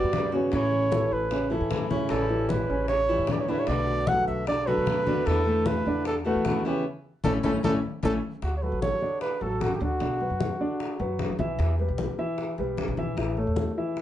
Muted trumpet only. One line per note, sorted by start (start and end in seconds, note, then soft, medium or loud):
0.00 0.33 D5 loud
0.54 1.14 C#5 loud
1.13 1.52 B4 medium
2.10 2.51 A4 medium
2.50 2.88 B4 medium
2.89 3.33 C#5 loud
3.32 3.42 D5 medium
3.40 3.51 C#5 medium
3.50 3.61 B4 medium
3.59 3.69 C#5 medium
3.67 4.09 D5 loud
4.08 4.27 F#5 loud
4.28 4.46 E5 medium
4.48 4.68 D5 medium
4.67 5.28 B4 loud
5.27 5.68 A4 medium
5.66 6.06 B4 medium
6.07 6.16 A4 medium
6.26 6.63 F#4 medium
6.66 6.84 G4 medium
7.24 7.34 A4 medium
7.45 7.54 A4 medium
7.64 7.74 A4 medium
8.04 8.14 A4 medium
8.43 8.56 F#4 medium
8.57 8.64 C#5 medium
8.62 8.82 B4 medium
8.82 9.19 C#5 medium
9.22 9.43 B4 medium
9.42 9.63 A4 medium
9.62 9.74 F#4 medium
9.75 9.84 G4 soft
9.83 11.01 F#4 medium